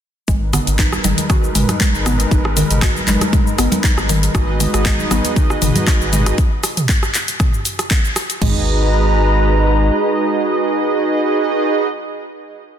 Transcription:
0.28 analog synth bass G#1, analog synth pad G#3 D#4 A#4 B4, synth pluck G#3, kick, closed hi-hat, shaker
0.53 synth pluck B3, cross-stick, open hi-hat, low conga, shaker
0.67 analog synth bass G#1, closed hi-hat, shaker
0.79 synth pluck D#4, kick, clap, closed hi-hat, shaker
0.92 cross-stick, high conga, shaker
1.04 analog synth bass G#1, synth pluck D#3, open hi-hat, high conga, shaker
1.18 closed hi-hat, high conga, shaker
1.30 synth pluck F#4, kick, cross-stick, closed hi-hat, low conga, shaker
1.44 shaker
1.55 analog synth bass G#1, synth pluck G#3, mid tom, open hi-hat, shaker
1.69 cross-stick, closed hi-hat, high conga, shaker
1.81 synth pluck G#3, kick, clap, closed hi-hat, shaker
1.94 analog synth bass G#1, shaker
2.06 synth pluck B3, cross-stick, mid tom, open hi-hat, shaker
2.20 closed hi-hat, shaker
2.31 analog synth bass G#1, synth pluck D#4, kick, closed hi-hat, shaker
2.45 cross-stick
2.57 synth pluck D#3, open hi-hat, low conga, shaker
2.71 analog synth bass G#1, closed hi-hat, mid tom, shaker
2.82 synth pluck F#4, kick, cross-stick, clap, closed hi-hat, shaker
2.96 high conga, shaker
3.07 analog synth bass G#1, synth pluck G#3, clap, open hi-hat, high conga, shaker
3.21 cross-stick, closed hi-hat, high conga, shaker
3.33 synth pluck G#3, kick, closed hi-hat, mid tom, shaker
3.47 shaker
3.58 analog synth bass G#1, synth pluck B3, cross-stick, open hi-hat, shaker
3.72 closed hi-hat, high conga, shaker
3.84 synth pluck D#4, kick, clap, closed hi-hat, shaker
3.98 analog synth bass G#1, cross-stick, shaker
4.09 synth pluck D#3, open hi-hat, high conga, shaker
4.23 closed hi-hat, shaker
4.35 analog synth bass G#1, analog synth pad B3 D#4, analog polysynth D#4 F#4 G#4 B4 D#5, synth pluck F#4, kick, cross-stick, closed hi-hat, shaker
4.60 synth pluck G#3, open hi-hat, low conga, shaker
4.74 analog synth bass G#1, analog polysynth D#4 F#4 G#4 B4 D#5, cross-stick, closed hi-hat, shaker
4.86 synth pluck G#3, kick, clap, closed hi-hat, shaker
4.99 high conga, shaker
5.11 analog synth bass G#1, synth pluck B3, cross-stick, open hi-hat, high conga, shaker
5.25 closed hi-hat, high conga, shaker
5.36 synth pluck D#4, kick, closed hi-hat, low conga, shaker
5.50 cross-stick, shaker
5.62 analog synth bass G#1, synth pluck D#3, mid tom, open hi-hat, shaker
5.75 closed hi-hat, high conga, shaker
5.87 synth pluck F#4, kick, cross-stick, clap, closed hi-hat, shaker
6.01 analog synth bass G#1, shaker
6.13 synth pluck G#3, mid tom, open hi-hat, shaker
6.26 cross-stick, closed hi-hat, shaker
6.38 kick, closed hi-hat, shaker
6.64 cross-stick, open hi-hat, shaker
6.77 closed hi-hat, mid tom, shaker
6.89 kick, clap, closed hi-hat, shaker
7.03 cross-stick, shaker
7.14 clap, open hi-hat, shaker
7.28 closed hi-hat, shaker
7.40 kick, cross-stick, closed hi-hat, mid tom, shaker
7.54 shaker
7.65 open hi-hat, shaker
7.79 cross-stick, closed hi-hat, shaker
7.91 kick, clap, closed hi-hat, shaker
8.05 shaker
8.16 cross-stick, open hi-hat, shaker
8.30 closed hi-hat, shaker
8.42 analog synth bass G#1, synth pluck G#3, analog synth pad G#3 D#4 B4 A#5, analog polysynth D#4 F#4 G#4 B4 D#5, kick, floor tom, crash

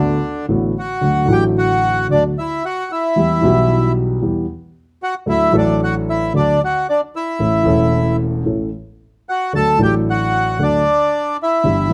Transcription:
Already playing: grand piano D2 D3 A3 B3 F#4, bandoneon D3 D4
0.48 grand piano A1 A2 D3 A3 B3 F#4
0.79 bandoneon F#4 F#5
1.01 grand piano D2 D3 F#3 A3 F#4
1.25 grand piano A1 A2 D3 F#3 A3
1.30 grand piano F#4, bandoneon G4 G5
1.58 bandoneon F#4 F#5
2.09 grand piano D2 D3 F#3 A3 F#4, bandoneon D4 D5
2.39 bandoneon E4 E5
2.65 bandoneon F#4 F#5
2.92 bandoneon E4 E5
3.16 grand piano E2 E3 G3 B3 G4
3.41 grand piano B1 B2 E3 G3 B3
3.46 grand piano G4
4.22 grand piano E2 E3 G3 B3 G4
5.03 bandoneon F#4 F#5
5.26 grand piano D2 D3 F#3 A3 D4 A4, bandoneon E4
5.31 bandoneon E5
5.51 grand piano A1 A2 F#3 A3 D4
5.55 bandoneon D4 D5, grand piano A4
5.83 bandoneon F#4 F#5
6.10 bandoneon E4 E5
6.34 grand piano D2 D3 F#3 A3 D4 A4, bandoneon D4 D5
6.64 bandoneon F#4 F#5
6.89 bandoneon D4 D5
7.16 bandoneon E4 E5
7.39 grand piano A1 A2 E3 A3 C#4 A4
7.63 grand piano E1 E2 E3 A3 C#4
7.67 grand piano A4
8.45 grand piano A1 A2 E3 A3 C#4 A4
9.29 bandoneon F#4 F#5
9.53 grand piano D2 D3 F#3 A3 D4 A4, bandoneon A4 A5
9.77 grand piano A1 A2 F#3 A3 D4 A4
9.82 bandoneon G4 G5
10.10 bandoneon F#4 F#5
10.59 grand piano D2 D3 F#3 A3 D4 A4
10.63 bandoneon D4 D5
11.43 bandoneon E4 E5
11.64 grand piano G1 G2 E3 B3 D4 G4
11.89 grand piano E3 B3

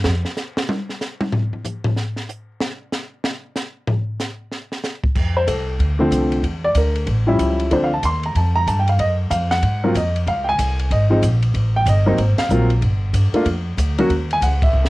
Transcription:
0.04 upright bass F2, snare
0.25 snare
0.37 snare, hi-hat pedal
0.57 snare
0.69 high tom
0.89 snare
1.01 snare, hi-hat pedal
1.21 high tom
1.33 floor tom
1.53 floor tom
1.65 floor tom, hi-hat pedal
1.85 floor tom
1.97 snare
2.17 snare
2.29 hi-hat pedal
2.61 snare
2.92 snare, hi-hat pedal
3.24 snare
3.56 snare, hi-hat pedal
3.87 floor tom
4.20 snare, hi-hat pedal
4.51 snare
4.72 snare
4.84 snare, hi-hat pedal
5.04 kick
5.15 upright bass F2, kick, crash
5.37 grand piano C5
5.47 upright bass C2, grand piano A4, kick, hi-hat pedal, ride
5.79 upright bass D2, kick, ride
5.99 grand piano D3 F3 A3 C4
6.11 upright bass C2, kick, hi-hat pedal, ride
6.32 ride
6.43 upright bass E2, kick, ride
6.64 grand piano D5
6.75 upright bass D2, grand piano A#4, kick, hi-hat pedal, ride
6.95 ride
7.07 upright bass A1, kick, ride
7.27 grand piano F3 G3 C#4 E4
7.39 upright bass C#2, kick, hi-hat pedal, ride
7.60 ride
7.71 upright bass D2, grand piano F3 A3 C4 D4 C5, kick, ride
7.84 grand piano F5
7.94 grand piano A5
8.03 upright bass D#2, grand piano C6, kick, hi-hat pedal, ride
8.23 grand piano A#5, ride
8.35 upright bass F2, grand piano A5, kick, ride
8.55 grand piano A#5
8.67 upright bass G2, grand piano A5, kick, hi-hat pedal, ride
8.79 grand piano G5
8.88 grand piano F5, ride
8.99 upright bass F#2, grand piano D#5, kick, ride
9.30 upright bass F2, grand piano F5, kick, hi-hat pedal, ride
9.51 grand piano F#5, snare, ride
9.62 upright bass G#2, kick, ride
9.84 grand piano F#3 A#3 C4 F4
9.94 upright bass F2, grand piano D#5, kick, hi-hat pedal, ride
10.16 ride
10.27 upright bass C#2, grand piano F5, kick, ride
10.44 grand piano G5
10.49 grand piano G#5
10.58 upright bass C2, kick, hi-hat pedal, ride
10.79 ride
10.91 upright bass G#1, grand piano D#5, kick, ride
11.10 grand piano F3 G#3 C4 D#4
11.22 upright bass A#1, kick, hi-hat pedal, ride
11.42 ride
11.54 upright bass A1, kick, ride
11.76 grand piano G5
11.85 upright bass G1, grand piano D#5, kick, hi-hat pedal, ride
12.06 grand piano F#3 A#3 C4 D#4 C5
12.17 upright bass G#1, kick, ride
12.37 grand piano F5, muted upright bass stroke, snare, ride
12.49 upright bass A#1, grand piano F#3 A#3 C4 F4, hi-hat pedal
12.70 ride
12.81 upright bass G1, kick, ride
13.13 upright bass G2, kick, hi-hat pedal, ride
13.33 grand piano A3 A#3 D4 F4, muted upright bass stroke, ride
13.45 upright bass F2, kick, ride
13.77 upright bass D2, kick, hi-hat pedal, ride
13.98 grand piano F#3 A#3 C#4 F#4, ride
14.09 upright bass D#2, kick, ride
14.31 grand piano G#5, ride
14.41 upright bass C#2, grand piano F#5, kick, hi-hat pedal, ride
14.62 grand piano E5, kick, ride
14.73 upright bass C2
14.85 snare

